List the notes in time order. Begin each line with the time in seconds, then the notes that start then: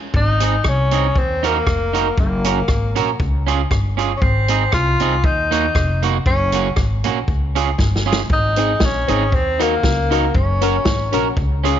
0.14 G#1 D#4, kick
0.40 C4 D#4 G#4, closed hi-hat
0.64 C2 C#4, kick, cross-stick
0.91 C4 D#4 G#4, closed hi-hat
1.16 D#2 C4, kick
1.43 A#3 D#4 F#4 A#4, closed hi-hat
1.67 F1, kick, cross-stick
1.93 D#4 F#4 A#4, closed hi-hat
2.18 F#1 A#3, kick
2.44 C#4 F#4 A#4, closed hi-hat
2.68 G#1, kick, cross-stick
2.96 A#1 C#4 F#4 A#4, closed hi-hat
3.20 C#2, kick
3.47 C#4 F4 G#4, closed hi-hat
3.71 G1, kick, cross-stick
3.97 C#4 F4 G#4, closed hi-hat
4.17 C#4
4.22 G#1 C4, kick
4.48 C4 D#4 G#4, closed hi-hat
4.72 C2 F4, kick, cross-stick
5.00 C2 C4 D#4 G#4, closed hi-hat
5.24 D#2 D#4, kick
5.51 A#3 D#4 F#4, closed hi-hat
5.75 F1, kick, cross-stick
6.03 A#3 D#4 F#4, closed hi-hat
6.26 F#1 C#4, kick
6.52 A#3 C#4 F#4, closed hi-hat
6.76 G#1, kick, cross-stick
7.04 A#1 A#3 C#4 F#4, closed hi-hat
7.28 C#2, kick
7.55 C#4 F4 G#4, closed hi-hat
7.78 G1, kick, snare
7.96 snare
8.06 C#4 F4 G#4
8.12 snare
8.30 G#1 D#4, kick
8.56 C4 D#4 G#4, closed hi-hat
8.80 A#1, kick, snare
8.84 C#4
9.07 G#1 C4 D#4 G#4, closed hi-hat
9.32 D#2 C4, kick
9.59 A#3 D#4 F#4 A#4, closed hi-hat
9.83 C#2 F#4 A#4, kick, snare
10.10 D#4 F#4 A#4, closed hi-hat
10.35 F#1 C#4, kick
10.61 C#4 F#4 A#4, closed hi-hat
10.85 G#1, kick, snare
11.12 A#1 C#4 F#4 A#4, closed hi-hat
11.37 C#2, kick
11.64 C#4 F4 G#4, closed hi-hat